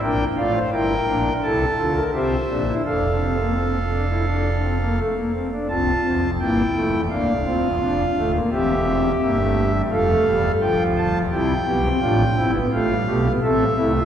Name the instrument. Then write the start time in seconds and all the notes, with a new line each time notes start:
pipe organ
0.02 A#1 A#2 D4 A#4 G5
0.37 A1 A2 F4 D5 F5
0.55 C5
0.72 G1 G2 E4 A#4 G5
1.08 A#1 A#2 D4
1.43 C2 C3 E4 A4 A5
1.78 D2 D3 F4 A4
1.96 A#4
2.14 C2 C3 G4 C5 E5
2.50 A#1 A#2 D4
2.68 E4
2.85 F1 F2 D4 A4 F5
3.21 C4
3.39 A#3
3.57 C4
3.92 D4
4.10 E4
4.27 D4
4.62 C4
4.80 A#3
4.98 A3
5.16 A#3
5.34 C4
5.52 D4
5.69 C1 C2 C4 F4 A5
6.05 E1 E2 C4
6.22 F1 F2
6.40 G1 G2 A#3 E4 G5
6.75 F1 F2 A3
6.92 E1 E2
7.10 D1 D2 A#3 D4 F5
7.28 C1 C2
7.46 D1 D2 C4 F4
7.64 E1 E2
7.81 F1 F2 D4
8.17 D1 D2 A3
8.35 A#3
8.51 E1 E2 C4 G4 E5
8.87 C4
9.22 G1 G2 A#3 E5
9.39 A3
9.75 G3
9.91 F1 F2 F3 A4 F5
10.09 A3
10.27 E1 E2 G3
10.61 D1 D2 F3 F4 G5
10.80 C1 C2
10.97 D1 D2 A5
11.14 E1 E2
11.31 C2 C3 G3 E4 G5
11.66 B1 B2 B3 G4
11.85 C4
12.01 A1 A2 D4 F4
12.37 G1 G2 C4 E4
12.54 B3
12.72 A1 A2 A3 F4 F5
12.89 G3
13.06 B1 B2 A3 G4
13.25 B3
13.42 A1 A2 C4 A4 E5
13.77 C2 C3 A3 E4
13.95 F4